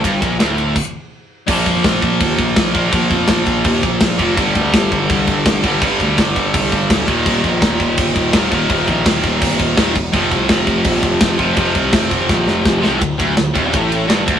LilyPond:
<<
  \new Staff \with { instrumentName = "Distorted electric guitar" } { \clef bass \time 4/4 \key bes \major \tempo 4 = 166 g,8 bes,8 d,4 r2 | <bes, f bes>2.~ <bes, f bes>8 <bes, f bes>8 | <bes, f bes>2.~ <bes, f bes>8 <bes, f bes>8 | <g, d g>2.~ <g, d g>8 <g, d g>8 |
<g, d g>2.~ <g, d g>8 <ees, bes, ees>8~ | <ees, bes, ees>2. <ees, bes, ees>8 <ees, bes, ees>8~ | <ees, bes, ees>2. <ees, bes, ees>8 r8 | <f, c f>2.~ <f, c f>8 <f, c f>8 |
<f, c f>2.~ <f, c f>8 <f, c f>8 | d,8 d,8 d,8 ees,8 a,4 g,8 d,8 | }
  \new Staff \with { instrumentName = "Picked electric bass" } { \clef bass \time 4/4 \key bes \major g,,8 bes,,8 d,,4 r2 | bes,,8 f,8 bes,,8 bes,,8 ees,8 bes,,8 bes,,8 bes,,8 | bes,,8 f,8 bes,,8 bes,,8 ees,8 bes,,8 bes,,8 f,,8 | g,,8 d,8 g,,8 g,,8 c,8 g,,8 g,,8 g,,8 |
g,,8 d,8 g,,8 g,,8 c,8 g,,8 d,,8 ees,,8 | ees,,8 bes,,8 ees,,8 ees,,8 g,,8 ees,,8 ees,,8 ees,,8 | ees,,8 bes,,8 ees,,8 ees,,8 g,,8 ees,,8 ees,,8 e,,8 | f,,8 c,8 f,,8 f,,8 bes,,8 f,,8 f,,8 f,,8 |
f,,8 c,8 f,,8 f,,8 bes,,8 f,,8 f,,8 c,8 | d,,8 d,,8 d,,8 ees,,8 a,,4 g,,8 d,,8 | }
  \new DrumStaff \with { instrumentName = "Drums" } \drummode { \time 4/4 <bd cymr>8 <bd cymr>8 <cymr sn>8 cymr8 <cymc bd>4 r4 | <cymc bd>8 <cymc bd>8 <cymc bd sn>8 <cymc bd>8 <cymc bd>8 <cymc bd>8 <cymc bd sn>8 <cymc bd>8 | <cymc bd>8 <cymc bd>8 <cymc bd sn>8 <cymc bd>8 <cymc bd>8 <cymc bd>8 <cymc bd sn>8 <cymc bd>8 | <cymc bd>8 <cymc bd>8 <cymc bd sn>8 <cymc bd>8 <cymc bd>8 <cymc bd>8 <cymc bd sn>8 <cymc bd>8 |
<cymc bd>8 <cymc bd>8 <cymc bd sn>8 <cymc bd>8 <cymc bd>8 <cymc bd>8 <cymc bd sn>8 <cymc bd>8 | <cymc bd>8 <cymc bd>8 <cymc bd sn>8 <cymc bd>8 <cymc bd>8 <cymc bd>8 <cymc bd sn>8 <cymc bd>8 | <cymc bd>8 <cymc bd>8 <cymc bd sn>8 <cymc bd>8 <cymc bd>8 <cymc bd>8 <cymc bd sn>8 <cymc bd>8 | <cymc bd>8 <cymc bd>8 <cymc bd sn>8 <cymc bd>8 <cymc bd>8 <cymc bd>8 <cymc bd sn>8 <cymc bd>8 |
<cymc bd>8 <cymc bd>8 <cymc bd sn>8 <cymc bd>8 <bd sn>8 sn8 <bd sn>8 sn8 | <bd cymr>8 <bd cymr>8 <cymr sn>8 <bd cymr>8 <bd cymr>8 cymr8 <cymr sn>8 <bd cymr>8 | }
>>